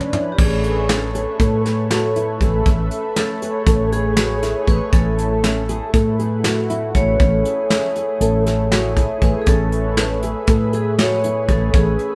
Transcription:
0.00 analog synth pad C#4 D4 B4, mid tom
0.13 nylon-string guitar E4, mid tom
0.32 vibraphone G4
0.38 fretless electric bass A1, analog synth pad A3 G#4 B4 C#5, nylon-string guitar C#4, vibraphone G#4, kick, crash
0.64 closed hi-hat
0.89 analog synth pad A3 A4 B4 C#5, nylon-string guitar C#4, vibraphone A4, snare, closed hi-hat
1.15 nylon-string guitar G#4, closed hi-hat
1.40 fretless electric bass A2, analog synth pad A3 A4 B4 C#5, nylon-string guitar A4, kick, closed hi-hat
1.65 nylon-string guitar G#4, snare, closed hi-hat
1.77 analog synth pad A3 A4 B4 C#5
1.91 nylon-string guitar F#4, snare, closed hi-hat
2.16 nylon-string guitar E4, closed hi-hat
2.28 analog synth pad A3 A4 B4 E5
2.40 fretless electric bass A1, nylon-string guitar G#4, kick, closed hi-hat
2.65 fretless electric bass A1, analog synth pad A3 A4 B4 E5, nylon-string guitar C#4, kick, closed hi-hat
2.91 closed hi-hat
3.16 analog synth pad A3 A4 B4 C#5, nylon-string guitar C#4, vibraphone A4, snare, closed hi-hat
3.42 nylon-string guitar G#4, closed hi-hat
3.66 fretless electric bass A1, analog synth pad A3 G#4 B4 C#5, nylon-string guitar A4, kick, closed hi-hat
3.92 nylon-string guitar G#4, vibraphone G#4, closed hi-hat
4.04 analog synth pad A3 G#4 B4 C#5
4.17 nylon-string guitar F#4, snare, closed hi-hat
4.42 nylon-string guitar E4, snare, closed hi-hat
4.55 analog synth pad A3 G#4 B4 C#5
4.67 fretless electric bass A1, nylon-string guitar G#4, vibraphone B4, kick, closed hi-hat
4.92 fretless electric bass A1, analog synth pad A3 E4 A4, nylon-string guitar C#4, vibraphone A4, kick, closed hi-hat
5.18 closed hi-hat
5.43 analog synth pad A3 E4 A4, nylon-string guitar C#4, snare, closed hi-hat
5.69 nylon-string guitar G#4, closed hi-hat
5.94 fretless electric bass A2, analog synth pad A3 E4 B4, nylon-string guitar A4, kick, closed hi-hat
6.19 nylon-string guitar G#4, closed hi-hat
6.32 analog synth pad A3 E4 F#4
6.44 nylon-string guitar F#4, snare, closed hi-hat
6.70 nylon-string guitar E4, closed hi-hat
6.83 analog synth pad A3 E4 B4
6.95 fretless electric bass A1, nylon-string guitar G#4, vibraphone C#5, kick, closed hi-hat
7.20 fretless electric bass A1, analog synth pad A3 E4 G#4, nylon-string guitar C#4, kick, closed hi-hat
7.45 closed hi-hat
7.70 analog synth pad A3 E4 G#4, nylon-string guitar C#4, snare, closed hi-hat
7.96 nylon-string guitar G#4, closed hi-hat
8.20 fretless electric bass A1, analog synth pad A3 E4 A4, nylon-string guitar A4, closed hi-hat
8.46 nylon-string guitar G#4, snare, closed hi-hat
8.58 analog synth pad A3 E4 G#4
8.72 nylon-string guitar F#4, snare, closed hi-hat
8.97 nylon-string guitar E4, kick, closed hi-hat
9.08 analog synth pad A3 E4 G#4
9.22 fretless electric bass A1, nylon-string guitar G#4, vibraphone B4, kick, closed hi-hat
9.42 vibraphone G#4
9.46 fretless electric bass A1, analog synth pad A3 A4 B4 C#5, nylon-string guitar C#4, vibraphone A4, kick, closed hi-hat
9.72 closed hi-hat
9.97 analog synth pad A3 G#4 B4 E5, nylon-string guitar C#4, vibraphone B4, snare, closed hi-hat
10.23 nylon-string guitar G#4, closed hi-hat
10.47 fretless electric bass A2, analog synth pad A3 G#4 B4 E5, nylon-string guitar A4, kick, closed hi-hat
10.73 nylon-string guitar G#4, vibraphone G#4, closed hi-hat
10.85 analog synth pad A3 G#4 B4 C#5
10.99 nylon-string guitar F#4, vibraphone C#5, snare, closed hi-hat
11.24 nylon-string guitar E4, closed hi-hat
11.35 analog synth pad A3 G#4 B4 C#5
11.48 fretless electric bass A1, nylon-string guitar G#4, vibraphone A4, kick, closed hi-hat
11.73 fretless electric bass A1, analog synth pad A3 G#4 B4 E5, nylon-string guitar C#4, vibraphone G#4, kick, closed hi-hat
11.99 closed hi-hat

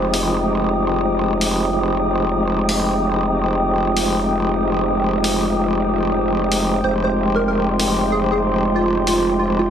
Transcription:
Already playing: wobble bass F1, tonewheel organ G#3 C4 D#4 G4, analog synth pad G#3 G5 D#6, ambient pad F4 C5 G5, digital synth lead C5, downlifter
0.14 open hi-hat
1.41 open hi-hat
1.73 tonewheel organ G#3 C4 D#4 G4
2.69 open hi-hat
3.97 open hi-hat
5.24 open hi-hat
6.52 open hi-hat
6.84 wobble bass F1, tonewheel organ G#3 C4 D#4 G4, digital synth lead C5, analog synth pad C6
7.04 digital synth lead C5
7.35 digital synth lead A#4
7.48 digital synth lead A#4
7.80 open hi-hat
8.12 digital synth lead G#4
8.32 digital synth lead G#4
8.76 digital synth lead F4
9.07 digital synth lead F4, open hi-hat
9.39 digital synth lead F4
9.59 digital synth lead F4

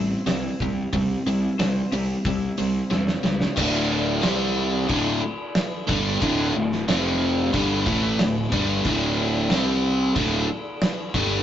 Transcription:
Already playing: fingered electric bass A1, overdriven electric guitar C3 G3, clean electric guitar C4 E4 G4 C5
0.26 fingered electric bass C2, overdriven electric guitar C3 G3, clean electric guitar E4, snare, open hi-hat
0.60 fingered electric bass C2, overdriven electric guitar C3 G3, clean electric guitar G4, kick, open hi-hat
0.93 fingered electric bass C2, overdriven electric guitar C3 G3, clean electric guitar C3, kick, open hi-hat
1.26 fingered electric bass C2, overdriven electric guitar C3 G3, clean electric guitar E4, open hi-hat
1.58 fingered electric bass C2, overdriven electric guitar C3 G3, clean electric guitar C5, snare, open hi-hat
1.92 fingered electric bass C2, overdriven electric guitar C3 G3, clean electric guitar G4, open hi-hat
2.25 fingered electric bass C2, overdriven electric guitar C3 G3, clean electric guitar E4, kick, open hi-hat
2.57 fingered electric bass C2, overdriven electric guitar C3 G3, clean electric guitar C4, open hi-hat
2.90 fingered electric bass E2, overdriven electric guitar C3 G3, clean electric guitar E4, snare
3.07 snare
3.23 fingered electric bass C#2, overdriven electric guitar C3 G3, clean electric guitar G4, snare
3.41 snare
3.56 fingered electric bass D1, overdriven electric guitar D2 A2 D3, kick, crash
4.22 fingered electric bass C2, overdriven electric guitar C3 G3 C4, snare, crash
4.89 fingered electric bass D1, overdriven electric guitar D2 A2 D3, kick, crash
5.55 snare, crash
5.88 fingered electric bass G1, overdriven electric guitar G2 D3 G3, kick
6.21 fingered electric bass D1, overdriven electric guitar D2 A2 D3, kick, crash
6.55 fingered electric bass D1, overdriven electric guitar D2 A2
6.72 snare
6.88 fingered electric bass F1, overdriven electric guitar F2 C3 F3, snare, crash
7.53 fingered electric bass G1, overdriven electric guitar G2 D3 G3, kick, crash
7.86 fingered electric bass A1, overdriven electric guitar A2 E3 A3, kick
8.19 fingered electric bass D1, overdriven electric guitar D2 A2, snare, crash
8.52 fingered electric bass G1, overdriven electric guitar G2 D3 G3, kick
8.85 fingered electric bass D1, overdriven electric guitar D2 A2 D3, kick, crash
9.50 fingered electric bass C2, overdriven electric guitar C3 G3 C4, snare, crash
10.16 fingered electric bass D1, overdriven electric guitar D2 A2 D3, kick, crash
10.81 snare, crash
11.14 fingered electric bass G1, overdriven electric guitar G2 D3 G3, kick

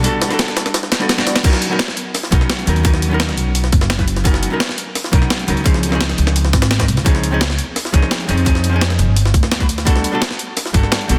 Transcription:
0.03 hollow-body jazz guitar G3 B3 D4 F#4 A4, closed hi-hat
0.21 snare, closed hi-hat
0.27 hollow-body jazz guitar G3 D4, snare, closed hi-hat
0.32 hollow-body jazz guitar F#4 A4
0.39 snare, closed hi-hat
0.48 snare, closed hi-hat
0.57 snare, closed hi-hat
0.66 snare, closed hi-hat
0.74 snare, closed hi-hat
0.83 snare
0.92 snare, closed hi-hat
0.99 hollow-body jazz guitar G3 B3 D4 F#4 A4, snare
1.09 snare, closed hi-hat
1.17 hollow-body jazz guitar G3 B3 D4 F#4 D5, snare, closed hi-hat
1.27 snare, closed hi-hat
1.36 snare, closed hi-hat
1.43 hollow-body jazz guitar F#3 B3 C#4 D#4 A#4, kick, closed hi-hat, crash
1.53 snare
1.62 closed hi-hat
1.69 hollow-body jazz guitar F#3 B3 C#4 D#4 A#4
1.79 snare, closed hi-hat
1.88 snare
1.97 closed hi-hat
2.14 snare, closed hi-hat, open hi-hat
2.23 snare
2.31 upright bass B1, hollow-body jazz guitar F#3 B3 C#4 D#4 A#4, kick, closed hi-hat
2.41 snare
2.50 snare, closed hi-hat
2.59 closed hi-hat
2.66 upright bass D#2, hollow-body jazz guitar F#3 B3 C#4 D#4 A#4, closed hi-hat
2.76 closed hi-hat
2.83 hollow-body jazz guitar F#3 B3 C#4 D#4 A#4, kick, closed hi-hat
2.94 snare
3.02 closed hi-hat
3.08 hollow-body jazz guitar F#3 B3 C#4
3.13 hollow-body jazz guitar D#4 A#4
3.20 snare, closed hi-hat
3.29 snare, closed hi-hat
3.37 upright bass B1, closed hi-hat
3.55 closed hi-hat
3.64 snare
3.72 upright bass F#1, kick, closed hi-hat
3.81 snare
3.90 snare, closed hi-hat
3.97 hollow-body jazz guitar F#3 B3 C#4 D#4 B4, kick, snare, closed hi-hat
4.08 closed hi-hat
4.16 snare, closed hi-hat
4.24 hollow-body jazz guitar F#3 B3 C#4 D#4 A#4, kick, closed hi-hat
4.34 snare
4.43 closed hi-hat
4.50 hollow-body jazz guitar F#3 B3 C#4 D#4 A#4
4.60 snare, closed hi-hat
4.69 snare
4.78 closed hi-hat
4.95 snare, closed hi-hat, open hi-hat
5.04 snare
5.11 upright bass B1, hollow-body jazz guitar F#3 B3 C#4 D#4 A#4, kick, closed hi-hat
5.22 snare
5.30 snare, closed hi-hat
5.39 closed hi-hat
5.47 upright bass C#2, hollow-body jazz guitar F#3 B3 C#4 D#4 A#4, closed hi-hat
5.57 closed hi-hat
5.64 hollow-body jazz guitar F3 C4 C#4 D#4 G#4, kick, closed hi-hat
5.74 snare
5.83 closed hi-hat
5.89 hollow-body jazz guitar F3 C4 C#4, snare
5.94 hollow-body jazz guitar D#4 G#4
6.01 snare, closed hi-hat
6.09 snare, closed hi-hat
6.18 upright bass C#2, closed hi-hat
6.27 snare
6.36 closed hi-hat
6.45 snare
6.53 upright bass G#1, kick, snare, closed hi-hat
6.62 snare, closed hi-hat
6.71 snare, closed hi-hat
6.78 hollow-body jazz guitar F3 C4 C#4 D#4 A#4, kick, snare, closed hi-hat
6.88 upright bass C#2, closed hi-hat
6.97 snare, closed hi-hat
7.04 hollow-body jazz guitar F3 C4 C#4 D#4 G#4, kick, closed hi-hat
7.15 snare
7.23 closed hi-hat
7.31 hollow-body jazz guitar F3 C4 C#4 D#4 G#4
7.41 snare, closed hi-hat
7.50 snare
7.58 closed hi-hat
7.76 snare, closed hi-hat, open hi-hat
7.85 snare
7.92 upright bass C#2, hollow-body jazz guitar F3 C4 C#4 D#4 G#4, kick, closed hi-hat
8.02 snare
8.11 snare, closed hi-hat
8.20 closed hi-hat
8.27 upright bass F2, hollow-body jazz guitar F3 C4 C#4 D#4 G#4, closed hi-hat
8.37 closed hi-hat
8.45 hollow-body jazz guitar F3 C4 C#4 D#4 G#4, kick, closed hi-hat
8.55 snare
8.64 closed hi-hat
8.69 hollow-body jazz guitar F3 C4 C#4
8.74 hollow-body jazz guitar D#4 G#4
8.81 snare, closed hi-hat
8.90 snare, closed hi-hat
8.99 upright bass G1, closed hi-hat
9.16 closed hi-hat
9.25 snare
9.34 upright bass D2, kick, closed hi-hat
9.43 snare
9.52 snare, closed hi-hat
9.59 hollow-body jazz guitar G3 B3 D4 F#4 B4, kick, snare, closed hi-hat
9.69 closed hi-hat
9.78 snare, closed hi-hat
9.85 hollow-body jazz guitar G3 B3 D4 F#4 A4, kick, closed hi-hat
9.96 snare
10.04 closed hi-hat
10.12 hollow-body jazz guitar G3 B3 D4 F#4 A4
10.22 snare, closed hi-hat
10.31 snare
10.39 closed hi-hat
10.57 snare, closed hi-hat, open hi-hat
10.66 snare
10.73 upright bass G1, hollow-body jazz guitar G3 B3 D4 F#4 A4, kick, closed hi-hat
10.83 snare
10.92 snare, closed hi-hat
11.01 closed hi-hat
11.08 upright bass B1, hollow-body jazz guitar G3 B3 D4 F#4 A4, closed hi-hat

